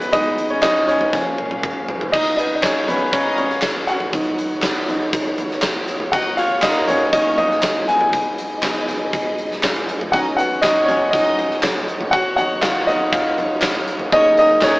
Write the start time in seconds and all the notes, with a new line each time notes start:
Already playing: G#2 D#3 B3 G#4 D#5
0.00 B3 B4, closed hi-hat
0.13 G#2 D#3 B3 D#4 D#5, kick, closed hi-hat
0.38 closed hi-hat
0.50 C#4 C#5
0.62 D#4 D#5, kick, snare, clap, closed hi-hat
0.88 C#4 C#5, closed hi-hat
1.01 floor tom
1.12 A#2 F3 C#4 A#4 F5, kick, snare
1.38 high tom
1.51 high tom
1.63 kick, mid tom
1.88 floor tom
2.01 floor tom
2.12 D#2 D#3 C#4 D#4 F#4 D#5 F5, kick, crash
2.37 B3 D#4 B4 D#5, closed hi-hat
2.55 D#5
2.63 C#4 C#5, kick, snare, clap, closed hi-hat
2.88 D#3 F#3 B3 C#4 B4, closed hi-hat, floor tom
3.13 C#4 D#4 C#5 D#5, kick, closed hi-hat
3.38 C#4 C#5, closed hi-hat, floor tom
3.50 snare
3.62 kick, snare, clap, closed hi-hat
3.64 clap
3.75 floor tom
3.87 F#4 F#5, closed hi-hat
4.00 floor tom
4.12 D#3 F#3 B3 D#4 C#5, kick, closed hi-hat
4.38 closed hi-hat
4.62 kick, snare, clap, closed hi-hat
4.64 clap
4.88 D#3 F#3 D#4, closed hi-hat, floor tom
5.13 kick, closed hi-hat
5.38 closed hi-hat, floor tom
5.51 snare
5.62 kick, snare, clap, closed hi-hat
5.64 clap
5.76 floor tom
5.88 closed hi-hat
6.00 floor tom
6.12 F#2 C#3 A#3 D#4 F#4 D#5 F#5, kick, closed hi-hat
6.37 C#4 F4 C#5 F5, closed hi-hat
6.62 A#3 D#4 A#4 D#5, kick, snare, clap, closed hi-hat
6.88 F#3 A#3 C#4 C#5, closed hi-hat, floor tom
7.13 C#4 D#4 C#5 D#5, kick, closed hi-hat
7.38 D#4 D#5, closed hi-hat, floor tom
7.51 snare
7.63 kick, snare, clap, closed hi-hat
7.76 floor tom
7.88 G#2 D#3 G#3 B3 D#4 G#4 D#5 G#5, closed hi-hat
8.01 floor tom
8.13 kick, closed hi-hat
8.38 closed hi-hat
8.63 G#3 B3 D#4, kick, snare, clap, closed hi-hat
8.88 closed hi-hat, floor tom
9.13 kick, closed hi-hat
9.38 closed hi-hat
9.51 snare
9.63 kick, snare, clap, closed hi-hat
9.76 floor tom
9.89 closed hi-hat
10.01 floor tom
10.12 D#2 D#3 F#3 C#4 D#4 F4 F#4 C#5 D#5 F#5, kick, closed hi-hat
10.37 B3 F#4 B4 F#5, closed hi-hat
10.62 C#4 D#4 C#5 D#5, kick, snare, clap, closed hi-hat
10.86 D#3 F#3 C#4 C#5, closed hi-hat, floor tom
11.11 D#4 D#5, kick, closed hi-hat
11.39 closed hi-hat, floor tom
11.51 snare
11.63 kick, snare, clap, closed hi-hat
11.76 floor tom
11.88 closed hi-hat
12.01 floor tom
12.11 B3 F#4 F#5, kick, closed hi-hat
12.36 D#3 F#3 D#4 F#4 F#5, closed hi-hat
12.62 F4 F5, kick, snare, clap, closed hi-hat
12.87 D#4 D#5, closed hi-hat, floor tom
13.12 F4 F5, kick, closed hi-hat
13.38 D#3 F#3 D#4, closed hi-hat, floor tom
13.62 kick, snare, clap, closed hi-hat
13.75 floor tom
13.87 closed hi-hat
13.99 floor tom
14.12 F#2 C#3 A#3 C#4 D#4 F#4 C#5 D#5, kick, closed hi-hat
14.37 A#3 D#4 A#4 D#5, closed hi-hat
14.61 A#3 C#4 A#4 C#5, kick, snare, clap, closed hi-hat